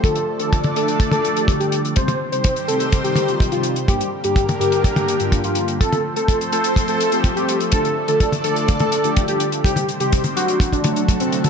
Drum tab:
HH |xx-xxxxxxxxxxxxx|xx-xxxxxxxxxxxxx|xx-xxxxxxxxxxxxx|xx-xxxxxxxxxxxxx|
T1 |-----o---o------|-o--------o-----|-----o---o------|-o--------------|
BD |o---o---o---o---|o---o---o---o---|o---o---o---o---|o---o---o---o---|

HH |xx-xxxxxxxxxxxxx|xxxxxxxxxxxxxxxx|
T1 |-----o---o------|-o---o----o----o|
BD |o---o---o---o---|o---o---oo--o---|